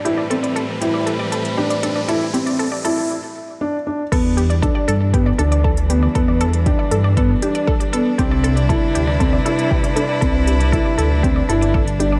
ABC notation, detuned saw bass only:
X:1
M:4/4
L:1/8
Q:1/4=118
K:Ephr
V:1 name="Detuned saw bass" clef=bass
z8 | z8 | E,,2 z G,,2 D,,3 | E,,2 z G,,2 z3 |
C,,2 z D,,2 z3 | C,,2 z D,,2 G,,,3 |]